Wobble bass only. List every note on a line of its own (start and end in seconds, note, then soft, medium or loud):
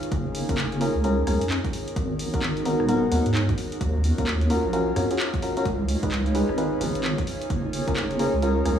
0.12 0.42 F#1 loud
0.49 0.89 F#1 loud
0.95 1.23 C#2 medium
1.27 1.37 C#2 medium
1.41 1.69 F#2 medium
1.96 2.27 G#1 loud
2.34 2.73 G#1 loud
2.80 3.08 D#1 medium
3.12 3.22 D#2 medium
3.26 3.54 G#2 medium
3.81 4.12 D#2 loud
4.18 4.58 D#2 loud
4.64 4.92 A#1 medium
4.96 5.06 F#2 loud
5.65 5.96 C#2 loud
6.03 6.42 C#2 loud
6.49 6.77 G#1 medium
6.81 6.91 G#1 medium
6.95 7.23 G#1 medium
7.50 7.81 F#1 loud
7.88 8.27 F#1 loud
8.34 8.61 C#2 medium
8.65 8.76 C#2 loud